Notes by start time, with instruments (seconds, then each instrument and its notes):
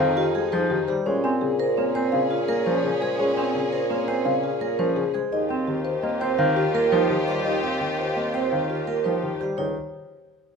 Already playing: bassoon F2, string section D#4 G#4
0.00 grand piano D#3, marimba F5
0.17 vibraphone F4, marimba G4
0.35 grand piano G#3, marimba G#4, vibraphone G#4
0.52 grand piano F3, vibraphone D#4, marimba C5
0.70 grand piano D#3, marimba G4
0.88 grand piano G3, vibraphone G4, marimba C5
1.06 bassoon A#2, grand piano G#3, vibraphone C#4, string section C#4 G#4, marimba C#5
1.24 vibraphone C4, grand piano C4, marimba G#5
1.41 grand piano C#3, marimba G#4
1.59 vibraphone A#4, marimba C5
1.77 grand piano A#3, vibraphone C4, marimba C#5
1.95 grand piano C4, vibraphone C5, marimba G#5
2.12 grand piano C#3, marimba F5
2.30 vibraphone F4, marimba G#4
2.48 grand piano A#3, marimba A#4, vibraphone A#4
2.66 grand piano F3, vibraphone C#4, marimba C5
2.84 grand piano C#3, marimba G#4
3.02 grand piano G#3, vibraphone G#4, marimba C5
3.19 grand piano G#3, vibraphone C#4, marimba C#5
3.37 vibraphone C4, grand piano C4, marimba G#5
3.55 grand piano C#3, marimba G#4
3.72 vibraphone A#4, marimba C5
3.90 grand piano A#3, vibraphone C4, marimba C#5
4.08 grand piano C4, vibraphone C5, marimba G#5
4.25 grand piano C#3, marimba F5
4.43 vibraphone F4, marimba G#4
4.60 grand piano A#3, marimba A#4, vibraphone A#4
4.79 grand piano F3, vibraphone C#4, marimba C5
4.96 grand piano C#3, marimba G#4
5.14 grand piano G#3, vibraphone G#4, marimba C5
5.32 bassoon D#2, vibraphone D#4, string section F4 G4, marimba D#5
5.49 grand piano C4, vibraphone C4, marimba G5
5.67 grand piano D#3, marimba G4
5.85 marimba C5
6.03 grand piano A#3, vibraphone C4, marimba D#5
6.21 grand piano C4, vibraphone C5, marimba G5
6.39 grand piano D#3, marimba F5
6.56 vibraphone F4, marimba G4
6.74 grand piano A#3, marimba A#4, vibraphone A#4
6.92 grand piano F3, vibraphone D#4, marimba C5
7.10 grand piano D#3, marimba G4
7.28 grand piano G3, vibraphone G4, marimba C5
7.45 vibraphone D#4, marimba D#5
7.63 grand piano C4, vibraphone C4, marimba G5
7.81 grand piano D#3, marimba G4
7.99 marimba C5
8.16 grand piano A#3, vibraphone C4, marimba D#5
8.34 grand piano C4, vibraphone C5, marimba G5
8.52 grand piano D#3, marimba F5
8.70 vibraphone F4, marimba G4
8.87 grand piano A#3, marimba A#4, vibraphone A#4
9.04 grand piano F3, vibraphone D#4, marimba C5
9.22 grand piano D#3, marimba G4
9.40 grand piano G3, vibraphone G4, marimba C5
9.57 bassoon C#2, grand piano D#3, vibraphone D#4, marimba C#5